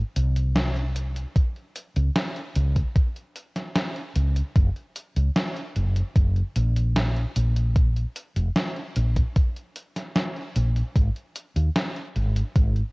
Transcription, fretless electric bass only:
0.16 1.24 C2 medium
1.96 2.08 C#2 medium
2.56 2.81 C#2 medium
4.16 4.41 C#2 medium
4.56 4.68 F#1 medium
5.16 5.28 C#2 medium
5.76 6.01 F#1 medium
6.16 6.41 F#1 medium
6.56 7.24 A#1 medium
7.36 8.04 A#1 medium
8.36 8.48 F1 medium
8.96 9.21 A#1 medium
10.56 10.81 A#1 medium
10.96 11.08 G#1 medium
11.56 11.68 D#2 medium
12.16 12.41 G#1 medium
12.56 12.81 G#1 medium

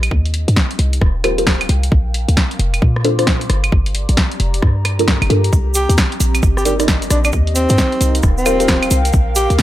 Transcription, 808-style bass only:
0.11 0.46 D#2 loud
0.48 0.56 G2 loud
0.79 1.00 C2 medium
1.01 1.68 D#1 medium
1.69 1.90 C2 loud
1.92 2.26 A#1 loud
2.28 2.36 D2 loud
2.59 2.80 F1 loud
2.82 3.48 A#2 medium
3.50 3.70 G1 loud
3.72 4.07 G1 loud
4.09 4.16 A#1 loud
4.40 4.61 F1 medium
4.62 5.21 G2 medium
5.22 5.29 G1 medium
5.30 5.51 G2 loud
5.53 5.87 C2 loud
5.89 5.97 D#2 loud
6.20 6.41 A#1 medium
6.43 7.09 G1 medium
7.11 7.31 A#1 loud
7.33 7.67 D#2 loud
7.70 7.77 G2 loud
8.01 8.21 C2 medium
8.23 8.90 D#1 medium
8.91 9.12 C2 loud
9.14 9.48 A#1 loud
9.50 9.58 D2 loud

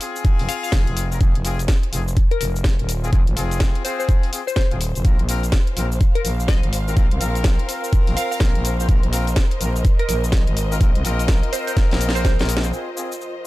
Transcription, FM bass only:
0.39 0.47 F1 medium
0.73 0.85 F1 medium
0.87 1.19 F1 loud
1.21 1.33 F1 loud
1.35 1.67 F1 loud
1.93 2.15 F1 loud
2.41 2.77 F1 loud
2.79 3.11 D#1 medium
3.27 3.35 G#1 loud
3.37 3.73 F1 loud
4.71 4.93 D#1 loud
4.95 5.03 F1 loud
5.05 5.17 A#1 loud
5.19 5.51 A#1 loud
5.77 5.99 A#1 loud
6.25 6.61 A#1 medium
6.63 6.95 G#1 loud
6.97 7.09 A#1 loud
7.11 7.19 C2 loud
7.21 7.57 A#1 loud
8.07 8.15 A#1 medium
8.41 8.53 A#1 loud
8.55 8.87 A#1 loud
9.03 9.35 A#1 loud
9.61 9.83 A#1 loud
10.09 10.45 A#1 loud
10.47 10.79 G#1 medium
10.81 10.93 A#1 loud
10.95 11.03 C2 loud
11.05 11.41 A#1 loud
11.91 12.37 A#1 medium
12.39 12.71 A#1 medium

